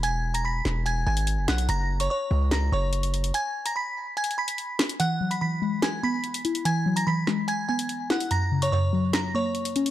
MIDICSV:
0, 0, Header, 1, 5, 480
1, 0, Start_track
1, 0, Tempo, 413793
1, 37, Time_signature, 4, 2, 24, 8
1, 11491, End_track
2, 0, Start_track
2, 0, Title_t, "Synth bell"
2, 0, Program_c, 0, 98
2, 36, Note_on_c, 0, 80, 97
2, 46, Note_on_c, 0, 92, 81
2, 375, Note_off_c, 0, 80, 0
2, 380, Note_off_c, 0, 92, 0
2, 396, Note_on_c, 0, 82, 78
2, 406, Note_on_c, 0, 94, 66
2, 499, Note_off_c, 0, 82, 0
2, 504, Note_off_c, 0, 94, 0
2, 517, Note_on_c, 0, 83, 77
2, 526, Note_on_c, 0, 95, 60
2, 969, Note_off_c, 0, 83, 0
2, 973, Note_off_c, 0, 95, 0
2, 994, Note_on_c, 0, 80, 85
2, 1003, Note_on_c, 0, 92, 72
2, 1200, Note_off_c, 0, 80, 0
2, 1205, Note_off_c, 0, 92, 0
2, 1235, Note_on_c, 0, 80, 79
2, 1245, Note_on_c, 0, 92, 58
2, 1688, Note_off_c, 0, 80, 0
2, 1693, Note_off_c, 0, 92, 0
2, 1716, Note_on_c, 0, 78, 89
2, 1726, Note_on_c, 0, 90, 64
2, 1921, Note_off_c, 0, 78, 0
2, 1927, Note_off_c, 0, 90, 0
2, 1958, Note_on_c, 0, 82, 103
2, 1968, Note_on_c, 0, 94, 82
2, 2296, Note_off_c, 0, 82, 0
2, 2301, Note_off_c, 0, 94, 0
2, 2320, Note_on_c, 0, 85, 77
2, 2330, Note_on_c, 0, 73, 57
2, 2421, Note_off_c, 0, 85, 0
2, 2426, Note_off_c, 0, 73, 0
2, 2439, Note_on_c, 0, 85, 84
2, 2448, Note_on_c, 0, 73, 61
2, 2890, Note_off_c, 0, 85, 0
2, 2894, Note_off_c, 0, 73, 0
2, 2915, Note_on_c, 0, 82, 83
2, 2924, Note_on_c, 0, 94, 66
2, 3120, Note_off_c, 0, 82, 0
2, 3125, Note_off_c, 0, 94, 0
2, 3162, Note_on_c, 0, 85, 74
2, 3171, Note_on_c, 0, 73, 59
2, 3837, Note_off_c, 0, 85, 0
2, 3842, Note_off_c, 0, 73, 0
2, 3877, Note_on_c, 0, 80, 104
2, 3886, Note_on_c, 0, 92, 80
2, 4216, Note_off_c, 0, 80, 0
2, 4221, Note_off_c, 0, 92, 0
2, 4241, Note_on_c, 0, 82, 83
2, 4250, Note_on_c, 0, 94, 57
2, 4342, Note_off_c, 0, 82, 0
2, 4347, Note_off_c, 0, 94, 0
2, 4359, Note_on_c, 0, 83, 80
2, 4368, Note_on_c, 0, 95, 66
2, 4809, Note_off_c, 0, 83, 0
2, 4814, Note_off_c, 0, 95, 0
2, 4836, Note_on_c, 0, 80, 89
2, 4845, Note_on_c, 0, 92, 66
2, 5041, Note_off_c, 0, 80, 0
2, 5046, Note_off_c, 0, 92, 0
2, 5080, Note_on_c, 0, 83, 84
2, 5089, Note_on_c, 0, 95, 70
2, 5756, Note_off_c, 0, 83, 0
2, 5760, Note_off_c, 0, 95, 0
2, 5796, Note_on_c, 0, 78, 115
2, 5806, Note_on_c, 0, 90, 88
2, 6135, Note_off_c, 0, 78, 0
2, 6140, Note_off_c, 0, 90, 0
2, 6156, Note_on_c, 0, 83, 78
2, 6165, Note_on_c, 0, 95, 61
2, 6259, Note_off_c, 0, 83, 0
2, 6264, Note_off_c, 0, 95, 0
2, 6279, Note_on_c, 0, 83, 81
2, 6288, Note_on_c, 0, 95, 64
2, 6729, Note_off_c, 0, 83, 0
2, 6734, Note_off_c, 0, 95, 0
2, 6756, Note_on_c, 0, 80, 82
2, 6765, Note_on_c, 0, 92, 62
2, 6961, Note_off_c, 0, 80, 0
2, 6966, Note_off_c, 0, 92, 0
2, 7000, Note_on_c, 0, 83, 90
2, 7009, Note_on_c, 0, 95, 66
2, 7676, Note_off_c, 0, 83, 0
2, 7680, Note_off_c, 0, 95, 0
2, 7718, Note_on_c, 0, 80, 95
2, 7727, Note_on_c, 0, 92, 80
2, 8056, Note_off_c, 0, 80, 0
2, 8061, Note_off_c, 0, 92, 0
2, 8075, Note_on_c, 0, 82, 76
2, 8085, Note_on_c, 0, 94, 65
2, 8178, Note_off_c, 0, 82, 0
2, 8184, Note_off_c, 0, 94, 0
2, 8198, Note_on_c, 0, 83, 78
2, 8207, Note_on_c, 0, 95, 60
2, 8649, Note_off_c, 0, 83, 0
2, 8654, Note_off_c, 0, 95, 0
2, 8675, Note_on_c, 0, 80, 84
2, 8684, Note_on_c, 0, 92, 73
2, 8880, Note_off_c, 0, 80, 0
2, 8885, Note_off_c, 0, 92, 0
2, 8915, Note_on_c, 0, 80, 78
2, 8925, Note_on_c, 0, 92, 57
2, 9367, Note_off_c, 0, 80, 0
2, 9373, Note_off_c, 0, 92, 0
2, 9397, Note_on_c, 0, 78, 88
2, 9406, Note_on_c, 0, 90, 65
2, 9601, Note_off_c, 0, 78, 0
2, 9606, Note_off_c, 0, 90, 0
2, 9639, Note_on_c, 0, 82, 98
2, 9648, Note_on_c, 0, 94, 83
2, 9977, Note_off_c, 0, 82, 0
2, 9982, Note_off_c, 0, 94, 0
2, 10000, Note_on_c, 0, 85, 79
2, 10009, Note_on_c, 0, 73, 60
2, 10101, Note_off_c, 0, 85, 0
2, 10106, Note_off_c, 0, 73, 0
2, 10118, Note_on_c, 0, 85, 80
2, 10127, Note_on_c, 0, 73, 61
2, 10569, Note_off_c, 0, 85, 0
2, 10574, Note_off_c, 0, 73, 0
2, 10596, Note_on_c, 0, 82, 85
2, 10605, Note_on_c, 0, 94, 66
2, 10801, Note_off_c, 0, 82, 0
2, 10806, Note_off_c, 0, 94, 0
2, 10843, Note_on_c, 0, 85, 77
2, 10852, Note_on_c, 0, 73, 61
2, 11491, Note_off_c, 0, 73, 0
2, 11491, Note_off_c, 0, 85, 0
2, 11491, End_track
3, 0, Start_track
3, 0, Title_t, "Synth pluck"
3, 0, Program_c, 1, 84
3, 5799, Note_on_c, 1, 52, 87
3, 6039, Note_on_c, 1, 54, 74
3, 6267, Note_off_c, 1, 52, 0
3, 6281, Note_on_c, 1, 52, 80
3, 6516, Note_on_c, 1, 56, 82
3, 6998, Note_on_c, 1, 59, 81
3, 7238, Note_off_c, 1, 54, 0
3, 7479, Note_off_c, 1, 52, 0
3, 7480, Note_on_c, 1, 64, 78
3, 7717, Note_off_c, 1, 56, 0
3, 7717, Note_on_c, 1, 52, 93
3, 7958, Note_on_c, 1, 54, 75
3, 8185, Note_off_c, 1, 52, 0
3, 8198, Note_off_c, 1, 59, 0
3, 8199, Note_on_c, 1, 52, 78
3, 8438, Note_on_c, 1, 56, 89
3, 8679, Note_off_c, 1, 64, 0
3, 8919, Note_on_c, 1, 59, 85
3, 9158, Note_off_c, 1, 54, 0
3, 9396, Note_on_c, 1, 64, 94
3, 9398, Note_off_c, 1, 52, 0
3, 9637, Note_off_c, 1, 64, 0
3, 9637, Note_on_c, 1, 42, 87
3, 9638, Note_off_c, 1, 56, 0
3, 9639, Note_off_c, 1, 59, 0
3, 9878, Note_on_c, 1, 49, 81
3, 10106, Note_off_c, 1, 42, 0
3, 10119, Note_on_c, 1, 42, 90
3, 10358, Note_on_c, 1, 54, 88
3, 10840, Note_on_c, 1, 58, 81
3, 11078, Note_off_c, 1, 49, 0
3, 11318, Note_off_c, 1, 42, 0
3, 11320, Note_on_c, 1, 61, 86
3, 11491, Note_off_c, 1, 54, 0
3, 11491, Note_off_c, 1, 58, 0
3, 11491, Note_off_c, 1, 61, 0
3, 11491, End_track
4, 0, Start_track
4, 0, Title_t, "808-style bass"
4, 0, Program_c, 2, 38
4, 0, Note_on_c, 2, 28, 110
4, 711, Note_off_c, 2, 28, 0
4, 757, Note_on_c, 2, 28, 109
4, 1218, Note_off_c, 2, 28, 0
4, 1237, Note_on_c, 2, 32, 115
4, 1597, Note_on_c, 2, 30, 96
4, 1614, Note_off_c, 2, 32, 0
4, 1711, Note_off_c, 2, 30, 0
4, 1718, Note_on_c, 2, 35, 106
4, 1948, Note_off_c, 2, 35, 0
4, 1958, Note_on_c, 2, 30, 111
4, 2419, Note_off_c, 2, 30, 0
4, 2677, Note_on_c, 2, 37, 109
4, 3138, Note_off_c, 2, 37, 0
4, 3158, Note_on_c, 2, 30, 107
4, 3849, Note_off_c, 2, 30, 0
4, 11491, End_track
5, 0, Start_track
5, 0, Title_t, "Drums"
5, 38, Note_on_c, 9, 42, 80
5, 154, Note_off_c, 9, 42, 0
5, 401, Note_on_c, 9, 42, 76
5, 517, Note_off_c, 9, 42, 0
5, 757, Note_on_c, 9, 38, 62
5, 873, Note_off_c, 9, 38, 0
5, 1000, Note_on_c, 9, 42, 70
5, 1116, Note_off_c, 9, 42, 0
5, 1355, Note_on_c, 9, 42, 82
5, 1471, Note_off_c, 9, 42, 0
5, 1474, Note_on_c, 9, 42, 75
5, 1590, Note_off_c, 9, 42, 0
5, 1717, Note_on_c, 9, 38, 110
5, 1833, Note_off_c, 9, 38, 0
5, 1836, Note_on_c, 9, 42, 96
5, 1952, Note_off_c, 9, 42, 0
5, 1957, Note_on_c, 9, 42, 85
5, 2073, Note_off_c, 9, 42, 0
5, 2320, Note_on_c, 9, 42, 75
5, 2436, Note_off_c, 9, 42, 0
5, 2917, Note_on_c, 9, 38, 126
5, 2920, Note_on_c, 9, 42, 73
5, 3033, Note_off_c, 9, 38, 0
5, 3036, Note_off_c, 9, 42, 0
5, 3395, Note_on_c, 9, 42, 74
5, 3511, Note_off_c, 9, 42, 0
5, 3518, Note_on_c, 9, 42, 85
5, 3634, Note_off_c, 9, 42, 0
5, 3640, Note_on_c, 9, 42, 78
5, 3756, Note_off_c, 9, 42, 0
5, 3758, Note_on_c, 9, 42, 92
5, 3874, Note_off_c, 9, 42, 0
5, 3877, Note_on_c, 9, 42, 82
5, 3993, Note_off_c, 9, 42, 0
5, 4241, Note_on_c, 9, 42, 75
5, 4357, Note_off_c, 9, 42, 0
5, 4838, Note_on_c, 9, 42, 43
5, 4917, Note_off_c, 9, 42, 0
5, 4917, Note_on_c, 9, 42, 57
5, 4997, Note_off_c, 9, 42, 0
5, 4997, Note_on_c, 9, 42, 67
5, 5113, Note_off_c, 9, 42, 0
5, 5196, Note_on_c, 9, 42, 81
5, 5312, Note_off_c, 9, 42, 0
5, 5315, Note_on_c, 9, 42, 76
5, 5431, Note_off_c, 9, 42, 0
5, 5559, Note_on_c, 9, 38, 113
5, 5559, Note_on_c, 9, 46, 59
5, 5675, Note_off_c, 9, 38, 0
5, 5675, Note_off_c, 9, 46, 0
5, 5678, Note_on_c, 9, 42, 89
5, 5794, Note_off_c, 9, 42, 0
5, 5797, Note_on_c, 9, 42, 84
5, 5913, Note_off_c, 9, 42, 0
5, 6161, Note_on_c, 9, 42, 77
5, 6277, Note_off_c, 9, 42, 0
5, 6756, Note_on_c, 9, 38, 121
5, 6760, Note_on_c, 9, 42, 75
5, 6872, Note_off_c, 9, 38, 0
5, 6876, Note_off_c, 9, 42, 0
5, 7235, Note_on_c, 9, 42, 76
5, 7351, Note_off_c, 9, 42, 0
5, 7358, Note_on_c, 9, 42, 84
5, 7474, Note_off_c, 9, 42, 0
5, 7479, Note_on_c, 9, 42, 79
5, 7595, Note_off_c, 9, 42, 0
5, 7598, Note_on_c, 9, 42, 89
5, 7714, Note_off_c, 9, 42, 0
5, 7718, Note_on_c, 9, 42, 85
5, 7834, Note_off_c, 9, 42, 0
5, 8081, Note_on_c, 9, 42, 76
5, 8197, Note_off_c, 9, 42, 0
5, 8437, Note_on_c, 9, 38, 62
5, 8553, Note_off_c, 9, 38, 0
5, 8679, Note_on_c, 9, 42, 69
5, 8795, Note_off_c, 9, 42, 0
5, 9036, Note_on_c, 9, 42, 82
5, 9152, Note_off_c, 9, 42, 0
5, 9155, Note_on_c, 9, 42, 74
5, 9271, Note_off_c, 9, 42, 0
5, 9398, Note_on_c, 9, 38, 117
5, 9514, Note_off_c, 9, 38, 0
5, 9518, Note_on_c, 9, 42, 90
5, 9634, Note_off_c, 9, 42, 0
5, 9638, Note_on_c, 9, 42, 85
5, 9754, Note_off_c, 9, 42, 0
5, 10001, Note_on_c, 9, 42, 77
5, 10117, Note_off_c, 9, 42, 0
5, 10596, Note_on_c, 9, 38, 127
5, 10599, Note_on_c, 9, 42, 76
5, 10712, Note_off_c, 9, 38, 0
5, 10715, Note_off_c, 9, 42, 0
5, 11075, Note_on_c, 9, 42, 75
5, 11191, Note_off_c, 9, 42, 0
5, 11197, Note_on_c, 9, 42, 87
5, 11313, Note_off_c, 9, 42, 0
5, 11318, Note_on_c, 9, 42, 78
5, 11434, Note_off_c, 9, 42, 0
5, 11438, Note_on_c, 9, 42, 93
5, 11491, Note_off_c, 9, 42, 0
5, 11491, End_track
0, 0, End_of_file